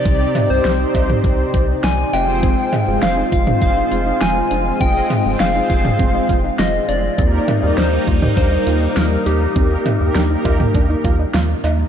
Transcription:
<<
  \new Staff \with { instrumentName = "Soft synth lead" } { \time 4/4 \key f \dorian \tempo 4 = 101 d''8. c''16 c''4 r4 aes''8 g''8~ | g''4 f''8 f''8 f''4 aes''4 | g''4 f''8 f''4. ees''8 d''8~ | d''4 c''4 c''4 bes'8 g'8~ |
g'2. r4 | }
  \new Staff \with { instrumentName = "Analog polysynth" } { \time 4/4 \key f \dorian <c' ees' g' d''>8 r16 <c' ees' g' c''>16 r16 <c' ees' g' c''>4. r8. <c' f' aes' c''>8~ | <c' f' aes' c''>8 r16 <c' f' aes' c''>8. r16 <c' f' aes' c''>4. r8. | <c' f' aes' ees''>8 r16 <c' f' aes' c''>16 r16 <c' f' aes' c''>4. r4 r16 | <bes ees' g' bes'>8 r16 <bes ees' g' bes'>8. r16 <bes ees' g' bes'>4. r8. |
<bes ees' g' bes'>8 r16 <bes ees' g' bes'>16 r16 <bes ees' g' bes'>4. r4 r16 | }
  \new Staff \with { instrumentName = "Synth arpeggio sound" } { \time 4/4 \key f \dorian r1 | c'8 c'8 d'16 ees'16 f'16 d'16 c'16 ees'16 f'16 ees'16 f'8 d'8 | c'8 c'8 d'16 ees'16 f'16 d'16 c'16 ees'16 f'16 ees'16 f'8 d'8 | c'8 c'8 d'16 ees'16 f'16 ees'16 d'16 ees'16 f'16 ees'16 f'8 ees'8 |
c'8 c'8 d'16 ees'16 f'16 ees'16 d'16 ees'16 f'16 ees'16 f'8 ees'8 | }
  \new Staff \with { instrumentName = "Analog synth pad" } { \time 4/4 \key f \dorian << { <c g' d''>2.~ <c g' d''>8 <aes f'>8~ | <aes f'>1~ | <aes f'>1 | <g ees'>1~ |
<g ees'>1 | } \\ { <c' ees'>1~ | <c' ees'>1~ | <c' ees'>1 | bes1~ |
bes1 | } >> }
  \new Staff \with { instrumentName = "Analog synth bass" } { \clef bass \time 4/4 \key f \dorian c,8 r16 c,16 c,8 c,8 c,8 c,8 c,8 f,,8~ | f,,8 r16 f,,16 f,,8 f,,8 f,,8 f,,8 f,,8 f,,8 | f,,8 r16 f,,16 f,,8 f,,8 f,,8 f,,8 f,,8 f,,8 | ees,8 r16 ees,16 ees,8 ees,8 ees,8 ees,8 ees,8 ees,8 |
ees,8 r16 ees,16 ees,8 ees,8 ees,8 ees,8 ees,8 ees,8 | }
  \new DrumStaff \with { instrumentName = "Drums" } \drummode { \time 4/4 <hh bd>8 <cb hh toml>8 <hh sn>8 <cb hh bd>16 toml16 <hh bd>8 <hh bd>8 <hh sn>8 <cb hh>8 | <hh bd>8 <cb hh toml>8 <hh sn>8 <hh bd>16 toml16 <hh bd>8 hh8 <hh sn>8 hh8 | <hh bd>8 <cb hh toml>8 <hh sn>8 <hh bd>16 toml16 <hh bd>8 <hh bd>8 <hh sn>8 hh8 | <hh bd>8 <cb hh toml>8 <hh sn>8 <hh bd>16 toml16 <hh bd>8 hh8 <hh sn>8 hh8 |
<hh bd>8 <cb hh toml>8 <hh sn>8 <cb hh bd>16 toml16 <hh bd>8 <hh bd>8 <hh sn>8 <cb hh>8 | }
>>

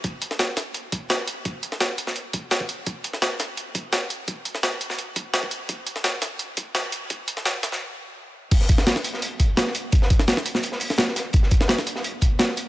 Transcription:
\new DrumStaff \with { instrumentName = "Drums" } \drummode { \time 4/4 \tempo 4 = 170 <hh bd>8 hh16 sn16 <hh sn>8 <hh sn>8 hh8 <hh bd>8 <hh sn>8 hh8 | <hh bd>8 hh16 sn16 <hh sn>8 hh16 sn16 hh8 <hh bd>8 <hh sn>16 bd16 hh8 | <hh bd>8 hh16 sn16 <hh sn>8 <hh sn>8 hh8 <hh bd>8 <hh sn>8 hh8 | <hh bd>8 hh16 sn16 <hh sn>8 hh16 sn16 hh8 <hh bd>8 <hh sn>16 bd16 hh8 |
<hh bd>8 hh16 sn16 <hh sn>8 <hh sn>8 hh8 <hh bd>8 <hh sn>8 hh8 | <hh bd>8 hh16 sn16 <hh sn>8 <hh sn>16 sn16 r4 r4 | <cymc hh bd>16 sn16 <hh bd>16 sn16 <hh sn>16 sn16 hh16 sn16 hh8 <hh bd>8 <hh sn>16 sn16 hh8 | <hh bd>16 sn16 <hh bd>16 sn16 <hh sn>16 sn16 hh16 sn16 hh16 sn16 <hh hho>16 sn16 <hh sn>16 sn16 <hh sn>8 |
<hh bd>16 sn16 <hh bd>16 sn16 <hh sn>16 sn16 hh16 sn16 hh8 <hh bd>8 <hh sn>16 sn16 hh8 | }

